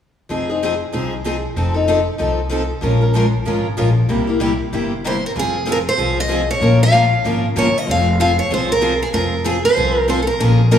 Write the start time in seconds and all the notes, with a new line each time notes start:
0.29 F1 F3 C4 D#4 G#4
0.49 C4 D#4 G#4
0.63 F3 C4 D#4 G#4
0.93 C2 F3 C4 D#4 G#4
1.25 F3 C4 D#4 G#4
1.56 F1 F3 C4 D#4 A4
1.74 C4 D#4 A4
1.88 F3 C4 D#4 A4
2.18 C2 F3 C4 D#4 A4
2.49 F3 C4 D#4 A4
2.81 A#1 F3 G#3 C#4 F4 A#4
3.01 C#4 F4 A#4
3.15 F3 G#3 C#4 F4 A#4
3.46 G#1 F3 G#3 C#4 F4 A#4
3.77 A#1 F3 G#3 C#4 F4 A#4
4.09 C2 C3 G3 A#3 E4 G4
4.27 A#3 E4 G4
4.40 C3 G3 A#3 E4 G4
4.73 G1 C3 G3 A#3 E4 G4
5.04 C3 G3 A#3 E4 G4 C5
5.26 A#4
5.35 F1 F3 C4 F4 G#4
5.66 F3 C4 F4 G#4
5.72 A#4
5.89 C5
5.97 C2 F3 C4 F4 G#4
6.20 D#5
6.28 F3 C4 F4 G#4
6.51 C#5
6.60 A#1 F3 A#3 C#4 F4 A#4
6.83 F5
6.92 F3 A#3 C#4 F4 A#4
7.24 G#1 F3 A#3 C#4 F4 A#4
7.56 G1 F3 A#3 C#4 F4 A#4 C#5
7.78 D#5
7.87 F1 F3 C4 F4 G#4
7.91 F5
8.20 F3 C4 F4 G#4 F5
8.39 C#5
8.51 C2 F3 C4 F4 G#4 C5
8.72 A#4
8.81 F3 C4 F4 G#4
9.03 G#4
9.13 F1 F3 C4 F4 G#4 A#4
9.44 F3 C4 F4 G#4
9.65 C5
9.77 C2 F3 C4 F4 G#4
10.08 F3 C4 F4 G#4 C5
10.22 A4
10.27 A#4
10.39 A#1 F3 A#3 C#4 F4 G#4 A#4
10.71 F3 A#3 C#4 F4 A#4